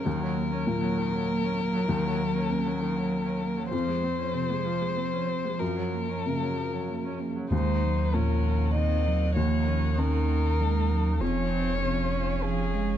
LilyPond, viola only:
\new Staff \with { instrumentName = "Viola" } { \time 3/4 \key ees \dorian \tempo 4 = 98 ees16 ges16 bes16 des'16 bes16 ges16 ees16 ges16 bes16 des'16 bes16 ges16 | ees16 ges16 bes16 des'16 bes16 ges16 ees16 ges16 bes16 des'16 bes16 ges16 | f16 aes16 c'16 des'16 c'16 aes16 f16 aes16 c'16 des'16 c'16 aes16 | f16 ges16 bes16 des'16 bes16 ges16 f16 ges16 bes16 des'16 bes16 ges16 |
ees'4 des'4 c'4 | bes8 des'8 ees'2 | des'8 c'8 des'2 | }